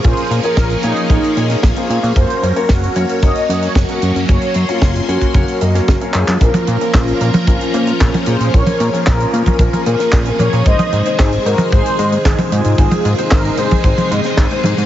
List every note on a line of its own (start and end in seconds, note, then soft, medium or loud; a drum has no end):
0.00 2.12 F3 medium
0.00 6.37 A#3 medium
0.00 6.37 C#4 medium
0.00 2.12 G#4 medium
0.00 closed hi-hat medium
0.04 0.14 A#1 loud
0.04 0.41 A#3 medium
0.04 0.41 C#4 medium
0.04 0.41 F4 medium
0.04 0.41 G#4 medium
0.04 0.41 C5 loud
0.04 kick loud
0.17 closed hi-hat soft
0.31 0.40 A#2 medium
0.31 closed hi-hat loud
0.43 0.81 A#3 medium
0.43 0.81 F4 medium
0.43 0.81 G#4 medium
0.43 0.85 A#4 loud
0.43 0.81 C#5 loud
0.43 closed hi-hat medium
0.57 0.76 A#1 medium
0.57 kick loud
0.57 snare loud
0.57 closed hi-hat medium
0.70 closed hi-hat soft
0.83 0.93 A#2 medium
0.83 1.06 A#3 medium
0.83 1.60 D#4 loud
0.83 1.06 F4 medium
0.83 1.06 G#4 medium
0.83 1.06 C#5 loud
0.83 closed hi-hat loud
0.97 closed hi-hat medium
1.10 1.20 A#1 medium
1.10 1.33 A#3 medium
1.10 1.33 F4 medium
1.10 1.33 G#4 medium
1.10 1.33 C#5 loud
1.10 kick loud
1.10 closed hi-hat medium
1.24 closed hi-hat medium
1.37 1.56 A#2 medium
1.37 1.64 A#3 medium
1.37 1.64 F4 medium
1.37 1.63 G#4 medium
1.37 1.64 C#5 medium
1.37 closed hi-hat loud
1.50 snare soft
1.50 closed hi-hat medium
1.63 1.73 A#1 medium
1.63 2.18 F4 loud
1.63 kick loud
1.63 snare loud
1.63 closed hi-hat medium
1.76 2.13 A#3 medium
1.76 2.13 F4 medium
1.76 2.13 G#4 medium
1.76 2.13 C5 medium
1.76 closed hi-hat medium
1.90 1.99 A#2 loud
1.90 closed hi-hat medium
2.03 2.13 A#2 loud
2.03 closed hi-hat medium
2.16 2.26 F#1 loud
2.16 6.37 F#3 medium
2.16 2.53 A#3 medium
2.16 2.53 C#4 medium
2.16 2.53 F#4 medium
2.16 2.53 A#4 medium
2.16 4.27 A#4 medium
2.16 2.57 C5 loud
2.16 kick loud
2.16 closed hi-hat medium
2.30 closed hi-hat medium
2.43 2.52 F#2 medium
2.43 closed hi-hat medium
2.56 2.93 A#3 medium
2.56 2.93 C#4 medium
2.56 2.93 F#4 medium
2.56 2.70 A#4 loud
2.56 2.93 C#5 loud
2.56 closed hi-hat medium
2.69 2.89 F#1 medium
2.69 3.19 F#4 loud
2.69 kick loud
2.69 snare loud
2.69 closed hi-hat medium
2.83 closed hi-hat medium
2.96 3.06 F#2 medium
2.96 3.19 A#3 medium
2.96 3.19 C#4 medium
2.96 3.19 F#4 medium
2.96 3.19 C#5 loud
2.96 closed hi-hat loud
3.09 closed hi-hat medium
3.23 3.32 F#1 loud
3.23 3.45 A#3 medium
3.23 3.45 C#4 medium
3.23 3.45 F#4 medium
3.23 3.45 C#5 loud
3.23 3.64 D#5 loud
3.23 kick loud
3.23 closed hi-hat medium
3.35 closed hi-hat medium
3.49 3.68 F#2 medium
3.49 3.76 A#3 medium
3.49 3.76 C#4 medium
3.49 3.76 F#4 medium
3.49 3.76 C#5 medium
3.49 closed hi-hat loud
3.62 3.76 C#5 loud
3.62 closed hi-hat medium
3.75 3.85 F#1 medium
3.75 4.31 F#4 loud
3.75 kick loud
3.75 snare loud
3.75 closed hi-hat medium
3.88 4.26 A#3 medium
3.88 4.26 C#4 medium
3.88 4.26 F#4 medium
3.88 4.26 A#4 medium
3.88 closed hi-hat medium
4.02 4.12 F#2 medium
4.02 closed hi-hat medium
4.16 4.25 F#2 medium
4.16 closed hi-hat medium
4.29 4.38 F#1 loud
4.29 4.65 A#3 medium
4.29 4.65 C#4 medium
4.29 4.66 F#4 medium
4.29 4.70 C#5 loud
4.29 4.65 C#5 medium
4.29 6.39 C6 medium
4.29 kick loud
4.29 closed hi-hat medium
4.42 closed hi-hat medium
4.54 4.65 F#2 medium
4.54 closed hi-hat medium
4.69 5.05 F#3 medium
4.69 5.05 A#3 medium
4.69 5.05 C#4 medium
4.69 5.10 F4 loud
4.69 5.05 C#5 loud
4.69 closed hi-hat medium
4.82 5.01 F#1 medium
4.82 kick loud
4.82 snare loud
4.82 closed hi-hat medium
4.95 snare soft
4.95 closed hi-hat soft
5.09 5.18 F#2 medium
5.09 5.31 A#3 medium
5.09 5.31 C#4 medium
5.09 5.31 F#4 medium
5.09 5.34 F#4 medium
5.09 5.31 C#5 loud
5.09 closed hi-hat medium
5.21 kick soft
5.21 closed hi-hat soft
5.34 5.44 F#1 loud
5.34 5.58 A#3 medium
5.34 5.58 C#4 medium
5.34 6.11 F#4 medium
5.34 5.58 F#4 medium
5.34 5.58 C#5 loud
5.34 kick loud
5.34 closed hi-hat medium
5.48 closed hi-hat medium
5.61 5.81 F#2 medium
5.61 5.72 A#3 medium
5.61 5.72 C#4 medium
5.61 5.72 F#4 medium
5.61 5.72 D#5 medium
5.61 closed hi-hat medium
5.75 5.98 A#3 medium
5.75 5.98 C#4 medium
5.75 5.98 F#4 medium
5.75 5.98 C#5 medium
5.75 snare soft
5.75 closed hi-hat medium
5.88 5.98 F#1 medium
5.88 kick loud
5.88 snare loud
5.88 closed hi-hat medium
6.01 6.38 A#3 medium
6.01 6.38 C#4 medium
6.01 6.38 F#4 medium
6.01 6.38 C#5 medium
6.01 closed hi-hat medium
6.14 6.24 F#2 medium
6.14 6.40 F4 medium
6.14 6.42 G#4 medium
6.14 clap medium
6.14 closed hi-hat medium
6.28 6.38 F#2 loud
6.28 clap medium
6.28 closed hi-hat medium
6.41 6.51 A#1 medium
6.41 6.78 F3 medium
6.41 10.62 F3 medium
6.41 6.78 A#3 medium
6.41 10.62 A#3 medium
6.41 6.78 C#4 medium
6.41 10.62 C#4 medium
6.41 6.91 F4 medium
6.41 6.96 A#4 loud
6.41 6.78 A#4 medium
6.41 8.52 A#4 loud
6.41 kick loud
6.41 closed hi-hat medium
6.54 closed hi-hat medium
6.54 high tom medium
6.67 6.77 A#2 loud
6.67 closed hi-hat medium
6.81 7.18 F3 medium
6.81 7.18 A#3 medium
6.81 7.18 C#4 medium
6.81 7.18 A#4 loud
6.81 closed hi-hat medium
6.94 7.13 A#1 loud
6.94 7.44 C#4 medium
6.94 7.46 F4 loud
6.94 kick loud
6.94 snare loud
6.94 clap loud
6.94 closed hi-hat medium
7.07 closed hi-hat soft
7.21 7.30 A#2 medium
7.21 7.43 F3 medium
7.21 7.43 A#3 medium
7.21 7.43 C#4 medium
7.21 7.43 A#4 loud
7.21 closed hi-hat medium
7.34 closed hi-hat medium
7.34 high tom medium
7.47 7.57 A#1 loud
7.47 7.70 F3 medium
7.47 7.70 A#3 medium
7.47 7.70 C#4 medium
7.47 8.23 C#4 medium
7.47 8.29 F4 loud
7.47 7.70 A#4 loud
7.47 kick loud
7.47 closed hi-hat medium
7.61 closed hi-hat medium
7.74 7.93 A#2 loud
7.74 7.84 F3 medium
7.74 7.84 A#3 medium
7.74 7.84 C#4 medium
7.74 7.84 C5 medium
7.74 closed hi-hat loud
7.87 8.11 F3 medium
7.87 8.11 A#3 medium
7.87 8.11 C#4 medium
7.87 8.11 A#4 medium
7.87 closed hi-hat medium
8.00 8.10 A#1 medium
8.00 kick loud
8.00 snare loud
8.00 clap loud
8.00 closed hi-hat medium
8.14 8.50 F3 medium
8.14 8.50 A#3 medium
8.14 8.50 C#4 medium
8.14 8.50 A#4 medium
8.14 closed hi-hat medium
8.14 high tom medium
8.26 8.37 A#2 loud
8.26 8.52 G#4 medium
8.26 8.54 C5 loud
8.26 closed hi-hat medium
8.40 8.50 A#2 medium
8.40 closed hi-hat medium
8.53 8.63 A#1 loud
8.53 8.90 F3 medium
8.53 8.90 A#3 medium
8.53 8.90 C#4 medium
8.53 14.86 G#4 medium
8.53 8.90 A#4 medium
8.53 9.03 A#4 medium
8.53 9.08 C#5 loud
8.53 kick loud
8.53 closed hi-hat medium
8.67 closed hi-hat medium
8.67 high tom medium
8.80 8.90 A#2 loud
8.80 closed hi-hat medium
8.93 9.30 F3 medium
8.93 9.30 A#3 medium
8.93 9.30 C#4 medium
8.93 9.30 A#4 loud
8.93 closed hi-hat medium
9.06 9.26 A#1 medium
9.06 9.57 F4 medium
9.06 9.58 A#4 loud
9.06 kick loud
9.06 snare loud
9.06 clap loud
9.06 closed hi-hat medium
9.20 closed hi-hat medium
9.33 9.43 A#2 medium
9.33 9.56 F3 medium
9.33 9.56 A#3 medium
9.33 9.56 C#4 medium
9.33 9.56 A#4 loud
9.33 closed hi-hat medium
9.46 kick medium
9.46 closed hi-hat medium
9.46 high tom medium
9.59 9.69 A#1 loud
9.59 9.82 F3 medium
9.59 9.82 A#3 medium
9.59 9.82 C#4 medium
9.59 10.36 F4 medium
9.59 10.39 A#4 loud
9.59 9.82 A#4 loud
9.59 kick loud
9.59 closed hi-hat medium
9.73 closed hi-hat medium
9.73 high tom medium
9.86 9.96 A#2 medium
9.86 9.96 F3 medium
9.86 9.96 A#3 medium
9.86 9.96 C#4 medium
9.86 9.96 C5 medium
9.86 closed hi-hat medium
10.00 10.23 F3 medium
10.00 10.23 A#3 medium
10.00 10.23 C#4 medium
10.00 10.23 A#4 medium
10.00 snare soft
10.00 closed hi-hat medium
10.12 10.32 A#1 loud
10.12 kick loud
10.12 snare loud
10.12 clap loud
10.12 closed hi-hat medium
10.25 10.63 F3 medium
10.25 10.63 A#3 medium
10.25 10.63 C#4 medium
10.25 10.63 A#4 loud
10.25 closed hi-hat medium
10.39 10.49 A#2 loud
10.39 10.64 A#4 medium
10.39 10.64 C#5 loud
10.39 closed hi-hat medium
10.39 high tom medium
10.53 10.62 A#2 medium
10.53 closed hi-hat medium
10.65 10.75 G#1 loud
10.65 14.86 C3 medium
10.65 14.86 D#3 medium
10.65 14.86 G#3 medium
10.65 11.03 G#3 medium
10.65 11.03 C4 medium
10.65 11.03 D#4 medium
10.65 11.03 C5 medium
10.65 11.16 C5 loud
10.65 11.20 D#5 loud
10.65 kick loud
10.65 closed hi-hat medium
10.79 closed hi-hat medium
10.79 high tom medium
10.92 11.02 G#2 loud
10.92 closed hi-hat medium
11.05 11.43 G#3 medium
11.05 11.43 C4 medium
11.05 11.43 D#4 medium
11.05 11.43 C5 loud
11.05 closed hi-hat medium
11.19 11.38 G#1 loud
11.19 11.32 D#4 medium
11.19 11.31 G#4 loud
11.19 kick loud
11.19 snare loud
11.19 clap loud
11.19 closed hi-hat medium
11.32 closed hi-hat medium
11.45 11.55 G#2 medium
11.45 11.68 G#3 medium
11.45 11.68 C4 medium
11.45 11.68 D#4 medium
11.45 11.71 F#4 medium
11.45 11.73 A#4 loud
11.45 11.68 C5 loud
11.45 closed hi-hat medium
11.58 closed hi-hat medium
11.58 high tom medium
11.72 11.82 G#1 loud
11.72 11.95 G#3 loud
11.72 11.95 C4 medium
11.72 11.95 D#4 medium
11.72 12.22 G#4 medium
11.72 12.27 C5 loud
11.72 11.95 C5 loud
11.72 kick loud
11.72 closed hi-hat medium
11.86 closed hi-hat medium
11.99 12.18 G#2 loud
11.99 12.09 G#3 medium
11.99 12.09 C4 medium
11.99 12.09 D#4 medium
11.99 12.09 D#5 medium
11.99 closed hi-hat medium
12.12 12.35 G#3 medium
12.12 12.35 C4 medium
12.12 12.35 D#4 medium
12.12 12.35 C5 medium
12.12 closed hi-hat medium
12.25 12.35 G#1 loud
12.25 12.38 D#4 medium
12.25 12.37 G#4 medium
12.25 kick loud
12.25 snare loud
12.25 clap loud
12.25 closed hi-hat medium
12.38 12.75 G#3 medium
12.38 12.75 C4 medium
12.38 12.75 D#4 medium
12.38 12.75 C5 loud
12.38 closed hi-hat medium
12.38 high tom medium
12.52 12.61 G#2 loud
12.52 13.28 F4 medium
12.52 13.34 G#4 loud
12.52 closed hi-hat loud
12.64 12.75 G#2 medium
12.64 closed hi-hat medium
12.78 12.88 G#1 loud
12.78 13.15 G#3 medium
12.78 13.15 C4 medium
12.78 13.15 D#4 medium
12.78 13.15 C5 medium
12.78 kick loud
12.78 closed hi-hat medium
12.91 closed hi-hat soft
12.91 high tom medium
13.05 13.15 G#2 loud
13.05 closed hi-hat medium
13.18 13.55 G#3 medium
13.18 13.55 C4 medium
13.18 13.55 D#4 medium
13.18 13.55 C5 loud
13.18 closed hi-hat medium
13.31 13.51 G#1 loud
13.31 13.57 D#4 medium
13.31 13.59 A#4 loud
13.31 kick loud
13.31 snare loud
13.31 clap loud
13.31 closed hi-hat medium
13.45 closed hi-hat soft
13.57 13.68 G#2 medium
13.57 13.81 G#3 medium
13.57 13.81 C4 medium
13.57 13.81 D#4 medium
13.57 14.61 G#4 medium
13.57 14.60 C5 loud
13.57 13.81 C5 loud
13.57 closed hi-hat medium
13.71 kick medium
13.71 closed hi-hat medium
13.71 high tom medium
13.84 13.94 G#1 medium
13.84 14.07 G#3 medium
13.84 14.07 C4 medium
13.84 14.07 D#4 medium
13.84 14.07 C5 loud
13.84 kick loud
13.84 closed hi-hat medium
13.98 closed hi-hat medium
13.98 high tom medium
14.11 14.21 G#2 medium
14.11 14.21 G#3 medium
14.11 14.21 C4 medium
14.11 14.21 D#4 medium
14.11 14.21 D#5 medium
14.11 closed hi-hat loud
14.24 14.48 G#3 medium
14.24 14.48 C4 medium
14.24 14.48 D#4 medium
14.24 14.48 C5 medium
14.24 snare soft
14.24 closed hi-hat medium
14.37 14.47 G#1 loud
14.37 kick loud
14.37 snare loud
14.37 clap loud
14.37 closed hi-hat medium
14.51 14.86 G#3 medium
14.51 14.86 C4 medium
14.51 14.86 D#4 medium
14.51 14.86 C5 loud
14.51 closed hi-hat medium
14.64 14.74 G#2 medium
14.64 closed hi-hat medium
14.64 high tom medium
14.78 14.86 G#2 medium
14.78 closed hi-hat medium